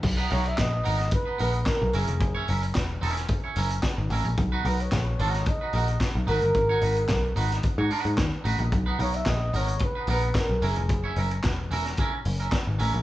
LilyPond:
<<
  \new Staff \with { instrumentName = "Flugelhorn" } { \time 4/4 \key b \major \tempo 4 = 110 r8 cis''16 e''16 dis''4 b'8 b'8 ais'8 gis'8~ | gis'8 r2. r8 | r8 b'16 cis''4~ cis''16 dis''4 r8 ais'8~ | ais'4. r2 r8 |
r8 cis''16 e''16 dis''8 cis''8 b'8 b'8 ais'8 gis'8~ | gis'8 r2. r8 | }
  \new Staff \with { instrumentName = "Clean electric guitar" } { \time 4/4 \key b \major r16 <b dis' b'>16 <b dis' ais'>16 r8. <b dis' ais'>16 r8 <b dis' b'>16 <b dis' ais'>16 r8. <cis' e' ais'>16 r16 | r16 <cis' e' cis''>16 <cis' e' ais'>16 r8. <cis' e' ais'>16 r8 <cis' e' cis''>16 <cis' e' ais'>16 r8. <cis' e' ais'>16 r16 | r16 <dis' fis' b'>16 <dis' fis' ais'>16 r8. <dis' fis' ais'>16 r8 <dis' fis' b'>16 <dis' fis' ais'>16 r8. <dis' fis' b'>16 r16 | r16 <dis' fis' cis''>16 <dis' fis' b'>16 r8. <dis' fis' b'>16 r8 <dis' fis' cis''>16 <dis' fis' b'>16 r8. <dis' fis' b'>16 r16 |
r16 <b dis' b'>16 <b dis' ais'>16 r8. <b dis' ais'>16 r8 <b dis' b'>16 <b dis' ais'>16 r8. <cis' e' ais'>16 r16 | r16 <cis' e' cis''>16 <cis' e' ais'>16 r8. <cis' e' ais'>16 r16 <cis' e' ais'>16 r8 <cis' e' ais'>16 r8 <cis' e' ais'>16 r16 | }
  \new Staff \with { instrumentName = "Picked electric bass" } { \clef bass \time 4/4 \key b \major b,,8 b,,8 ais,,8 gis,,8 r8 ais,,8 r16 b,,16 fis,,16 eis,,16 | fis,,8 fis,,8 e,,8 e,,8 r8 fis,,8 r16 gis,,16 a,,16 ais,,16 | b,,8 b,,8 ais,,8 gis,,8 r8 ais,,8 r16 b,,16 gis,,16 g,,16 | gis,,8 gis,,8 b,,8 gis,,8 r16 gis,16 r16 gis,16 dis,16 r16 a,,16 ais,,16 |
b,,8 b,,8 ais,,8 gis,,8 r8 ais,,8 r16 b,,16 fis,,16 eis,,16 | fis,,8 fis,,8 e,,8 e,,8 r8 fis,,8 r16 gis,,16 a,,16 ais,,16 | }
  \new DrumStaff \with { instrumentName = "Drums" } \drummode { \time 4/4 <cymc bd>8 hho16 hh16 <hc hh bd sn>8 hho16 <hh sn>16 <hh bd>8 hho16 hh16 <hc hh bd sn>8 hho16 hh16 | <hh bd>8 hho16 hh16 <hc hh bd sn>8 hho16 <hh sn>16 <hh bd>8 hho16 hh16 <hc hh bd sn>8 hho16 hh16 | <hh bd>8 hho16 hh16 <hc hh bd sn>8 hho16 <hh sn>16 <hh bd>8 hho16 hh16 <hc hh bd sn>8 hho16 hh16 | <hh bd>8 hho16 hh16 <hc hh bd sn>8 hho16 <hh sn>16 <hh bd>8 hho16 hh16 <hc hh bd sn>8 hho16 hh16 |
<hh bd>8 hho16 hh16 <hc hh bd sn>8 hho16 hh16 <hh bd>8 hho16 hh16 <hc hh bd sn>8 hho16 hh16 | <hh bd>8 hho16 hh16 <hc hh bd sn>8 hho16 <hh sn>16 <hh bd>8 hho16 hh16 <hc hh bd sn>8 hho16 hh16 | }
>>